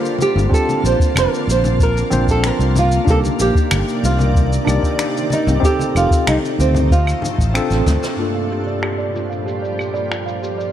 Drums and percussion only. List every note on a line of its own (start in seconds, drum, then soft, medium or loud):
0.05 shaker soft
0.19 high conga medium
0.19 shaker medium
0.36 low conga medium
0.36 shaker soft
0.52 kick loud
0.52 shaker medium
0.69 high conga medium
0.69 shaker soft
0.85 shaker medium
1.00 kick loud
1.00 shaker medium
1.15 finger snap medium
1.15 high conga medium
1.15 claves medium
1.15 shaker medium
1.34 shaker soft
1.50 shaker medium
1.64 high conga medium
1.64 low conga medium
1.64 shaker soft
1.79 kick loud
1.79 shaker medium
1.97 shaker soft
2.11 high conga medium
2.11 low conga medium
2.11 shaker medium
2.27 kick medium
2.27 shaker soft
2.44 finger snap medium
2.44 shaker medium
2.60 shaker soft
2.76 high conga medium
2.76 low conga medium
2.76 shaker medium
2.92 shaker soft
3.07 kick loud
3.07 shaker medium
3.24 high conga medium
3.24 shaker soft
3.39 shaker medium
3.55 kick loud
3.55 shaker soft
3.71 finger snap loud
3.71 high conga medium
3.71 claves medium
3.71 shaker medium
3.88 shaker soft
4.04 shaker medium
4.18 high conga medium
4.18 low conga medium
4.18 shaker soft
4.35 kick loud
4.35 shaker medium
4.53 shaker soft
4.67 high conga medium
4.67 claves medium
4.67 shaker medium
4.83 kick medium
4.83 shaker soft
4.99 finger snap medium
4.99 shaker medium
5.17 shaker soft
5.30 high conga medium
5.30 shaker medium
5.47 low conga medium
5.47 shaker soft
5.63 kick loud
5.63 shaker medium
5.79 high conga medium
5.79 shaker soft
5.96 claves medium
5.96 shaker medium
6.11 kick loud
6.11 shaker medium
6.27 finger snap loud
6.27 high conga medium
6.27 claves medium
6.27 shaker medium
6.45 shaker soft
6.60 shaker medium
6.74 high conga medium
6.74 low conga medium
6.74 shaker medium
6.91 kick medium
6.91 shaker medium
7.07 claves medium
7.07 shaker soft
7.22 high conga medium
7.22 low conga medium
7.22 shaker medium
7.39 kick medium
7.39 shaker soft
7.55 finger snap medium
7.55 shaker soft
7.71 cross-stick medium
7.71 shaker soft
7.86 kick medium
7.86 cross-stick medium
7.86 high conga medium
7.86 low conga medium
7.86 shaker medium
8.03 cross-stick medium
8.03 shaker soft
8.20 shaker medium
8.36 shaker soft
8.52 shaker medium
8.67 shaker soft
8.83 finger snap medium
8.83 claves medium
8.83 shaker soft
8.99 shaker soft
9.16 shaker medium
9.32 shaker soft
9.48 shaker soft
9.64 shaker soft
9.79 claves medium
9.79 shaker medium
9.95 shaker soft
10.12 finger snap medium
10.12 shaker soft
10.28 shaker soft
10.44 shaker medium
10.60 shaker soft